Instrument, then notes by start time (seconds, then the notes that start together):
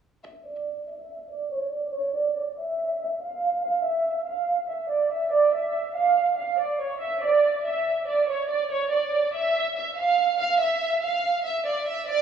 violin section
0.26 E5
0.46 D5
0.88 E5
1.31 D5
1.52 C#5
1.72 D5
1.94 C#5
2.15 D5
2.58 E5
3.00 E5
3.21 F5
3.63 F5
3.85 E5
4.27 F5
4.68 E5
4.91 D5
5.11 E5
5.32 D5
5.54 E5
5.95 F5
6.38 F5
6.59 D5
6.80 C#5
7.01 E5
7.22 D5
7.65 E5
8.07 D5
8.28 C#5
8.49 D5
8.71 C#5
8.92 D5
9.34 E5
9.76 E5
9.98 F5
10.39 F5
10.60 E5
11.02 F5
11.45 E5
11.66 D5
11.87 E5
12.08 D5